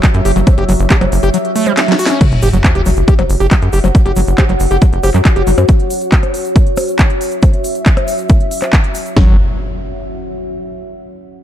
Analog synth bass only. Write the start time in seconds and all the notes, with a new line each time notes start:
0.14 F#2
0.25 F#1
0.36 F#1
0.58 F#1
0.69 F#1
0.80 F#1
1.01 F#1
1.12 F#1
1.23 F#1
2.32 F#1
2.43 F#1
2.53 F#1
2.75 F#1
2.86 F#1
2.97 F#1
3.19 F#1
3.30 F#1
3.40 F#1
3.62 F#2
3.73 F#1
3.84 F#1
4.06 F#1
4.17 F#1
4.27 F#1
4.49 F#1
4.60 F#1
4.71 F#1
4.93 F#1
5.04 F#1
5.14 F#2
5.36 F#1
5.47 F#1
5.58 F#2
9.17 F#1